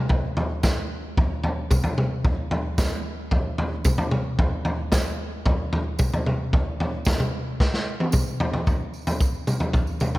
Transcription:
0.09 kick loud
0.09 floor tom medium
0.37 floor tom medium
0.63 kick loud
0.63 snare medium
0.63 floor tom medium
0.63 tambourine medium
1.17 kick loud
1.17 floor tom medium
1.44 floor tom medium
1.71 kick loud
1.71 mid tom medium
1.71 tambourine medium
1.84 floor tom medium
1.98 mid tom medium
2.25 kick loud
2.25 floor tom medium
2.51 floor tom medium
2.78 kick loud
2.78 snare medium
2.78 floor tom medium
2.78 tambourine medium
3.31 kick loud
3.31 floor tom medium
3.58 floor tom medium
3.85 kick loud
3.85 mid tom medium
3.85 tambourine medium
3.98 floor tom medium
4.11 mid tom medium
4.39 kick loud
4.39 floor tom medium
4.65 floor tom medium
4.92 kick loud
4.92 snare medium
4.92 floor tom medium
4.92 tambourine medium
5.46 kick loud
5.46 floor tom medium
5.73 floor tom medium
5.99 kick loud
5.99 mid tom medium
5.99 tambourine medium
6.14 floor tom medium
6.26 mid tom medium
6.53 kick loud
6.53 floor tom medium
6.80 floor tom medium
7.05 kick loud
7.05 snare medium
7.05 floor tom medium
7.05 tambourine medium
7.20 mid tom medium
7.60 kick loud
7.60 snare medium
7.74 snare medium
8.00 high tom medium
8.12 kick loud
8.12 mid tom medium
8.12 tambourine loud
8.40 floor tom loud
8.54 floor tom medium
8.67 kick loud
8.67 floor tom medium
8.67 tambourine soft
8.94 tambourine soft
9.07 floor tom medium
9.07 tambourine medium
9.20 kick loud
9.20 tambourine medium
9.35 tambourine soft
9.47 mid tom medium
9.47 tambourine medium
9.60 floor tom medium
9.73 kick loud
9.73 floor tom medium
9.73 tambourine soft
9.87 tambourine soft
10.00 floor tom medium
10.00 mid tom medium
10.00 tambourine medium
10.15 floor tom medium

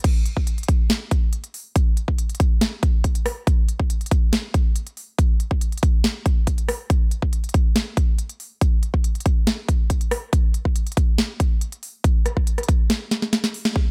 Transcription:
0.04 kick loud
0.04 closed hi-hat medium
0.04 crash loud
0.26 closed hi-hat medium
0.37 kick medium
0.47 closed hi-hat medium
0.58 closed hi-hat soft
0.63 closed hi-hat medium
0.68 kick loud
0.68 closed hi-hat medium
0.90 snare loud
0.90 closed hi-hat medium
1.11 kick loud
1.11 closed hi-hat medium
1.33 closed hi-hat medium
1.44 closed hi-hat medium
1.54 open hi-hat medium
1.76 kick loud
1.76 closed hi-hat medium
1.97 closed hi-hat medium
2.08 kick medium
2.18 closed hi-hat medium
2.29 closed hi-hat soft
2.35 closed hi-hat medium
2.40 kick loud
2.40 closed hi-hat medium
2.61 snare loud
2.61 closed hi-hat medium
2.83 kick loud
2.83 closed hi-hat medium
3.04 kick medium
3.04 closed hi-hat medium
3.15 closed hi-hat medium
3.26 cross-stick medium
3.26 open hi-hat medium
3.47 kick loud
3.47 closed hi-hat medium
3.69 closed hi-hat medium
3.80 kick medium
3.90 closed hi-hat medium
4.01 closed hi-hat soft
4.06 closed hi-hat medium
4.11 kick loud
4.11 closed hi-hat medium
4.33 snare loud
4.33 closed hi-hat medium
4.54 kick loud
4.54 closed hi-hat medium
4.76 closed hi-hat medium
4.87 closed hi-hat medium
4.97 open hi-hat medium
5.18 kick loud
5.18 closed hi-hat medium
5.40 closed hi-hat medium
5.51 kick medium
5.61 closed hi-hat medium
5.72 closed hi-hat soft
5.78 closed hi-hat medium
5.83 kick loud
5.83 closed hi-hat medium
6.04 snare loud
6.04 closed hi-hat medium
6.26 kick loud
6.26 closed hi-hat medium
6.47 kick medium
6.47 closed hi-hat medium
6.58 closed hi-hat medium
6.68 cross-stick medium
6.68 open hi-hat medium
6.90 kick loud
6.90 closed hi-hat medium
7.11 closed hi-hat medium
7.22 kick medium
7.33 closed hi-hat medium
7.44 closed hi-hat soft
7.49 closed hi-hat medium
7.54 kick loud
7.54 closed hi-hat medium
7.76 snare loud
7.76 closed hi-hat medium
7.97 kick loud
7.97 closed hi-hat medium
8.19 closed hi-hat medium
8.29 closed hi-hat medium
8.40 open hi-hat medium
8.61 kick loud
8.61 closed hi-hat medium
8.83 closed hi-hat medium
8.94 kick medium
9.04 closed hi-hat medium
9.15 closed hi-hat medium
9.20 closed hi-hat medium
9.26 kick loud
9.26 closed hi-hat medium
9.47 snare loud
9.47 closed hi-hat medium
9.69 kick loud
9.69 closed hi-hat medium
9.90 kick medium
9.90 closed hi-hat medium
10.01 closed hi-hat medium
10.11 cross-stick medium
10.11 open hi-hat loud
10.33 kick loud
10.33 closed hi-hat medium
10.54 closed hi-hat medium
10.65 kick medium
10.76 closed hi-hat medium
10.87 closed hi-hat medium
10.92 closed hi-hat medium
10.97 kick loud
10.97 closed hi-hat medium
11.18 snare loud
11.18 closed hi-hat medium
11.40 kick loud
11.40 closed hi-hat medium
11.61 closed hi-hat medium
11.72 closed hi-hat medium
11.83 open hi-hat loud
12.04 kick loud
12.04 closed hi-hat medium
12.26 cross-stick medium
12.26 closed hi-hat medium
12.37 kick medium
12.47 closed hi-hat medium
12.58 cross-stick medium
12.58 closed hi-hat medium
12.63 closed hi-hat medium
12.68 kick loud
12.68 closed hi-hat medium
12.90 snare loud
12.90 closed hi-hat medium
13.11 snare medium
13.11 closed hi-hat medium
13.22 snare medium
13.33 snare medium
13.33 closed hi-hat medium
13.44 snare medium
13.44 closed hi-hat medium
13.54 open hi-hat medium
13.65 snare medium
13.76 kick loud

